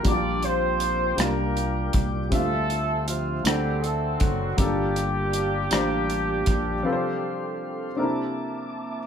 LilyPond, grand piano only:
\new Staff \with { instrumentName = "Grand piano" } { \time 6/8 \key d \minor \tempo 4. = 53 <bes, g bes d' f' ges' g'>4. <g bes d' f' g'>4. | <d g c' d' f' e''>4. <d a c' d' a' fis''>4. | <g, bes d' f' g' a'>4. <bes d' f' g' c''>4. | <c f c' f' a' b' c''>4. <c c' d' ees' e' a' bes'>4. | }